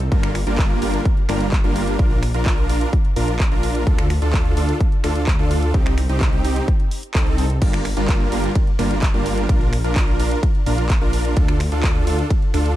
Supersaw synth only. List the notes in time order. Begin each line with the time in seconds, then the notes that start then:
0.12 G3 A#3 D4 F4 A#4
0.47 G3 A#3 D4 F4 A#4
0.82 G3 A#3 D4 F4 A#4
1.29 G3 A#3 D4 F4 A#4
1.64 G3 A#3 D4 F4 A#4
1.99 D4 F4 A#4
2.34 D4 F4 A#4
2.70 D4 F4 A#4
3.16 D4 F4 A#4
3.52 D4 F4 A#4
3.87 D4 F4 A4
4.22 D4 F4 A4
4.57 D4 F4 A4
5.04 D4 F4 A4
5.39 D4 F4 A4
5.74 C4 D#4 G4
6.10 C4 D#4 G4
6.45 C4 D#4 G4
7.15 C4 D#4 A4
7.62 G3 A#3 D4 F4 A#4
7.97 G3 A#3 D4 F4 A#4
8.32 G3 A#3 D4 F4 A#4
8.79 G3 A#3 D4 F4 A#4
9.14 G3 A#3 D4 F4 A#4
9.49 D4 F4 A#4
9.84 D4 F4 A#4
10.20 D4 F4 A#4
10.66 D4 F4 A#4
11.02 D4 F4 A#4
11.37 D4 F4 A4
11.72 D4 F4 A4
12.07 D4 F4 A4
12.54 D4 F4 A4